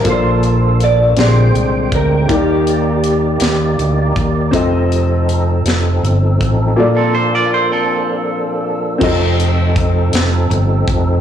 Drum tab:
CC |------|------|------|------|
HH |xxxxxx|xxxxxx|xxxxxx|------|
SD |---o--|---o--|---o--|------|
BD |o----o|o----o|o----o|------|

CC |x-----|
HH |-xxxxx|
SD |---o--|
BD |o-o--o|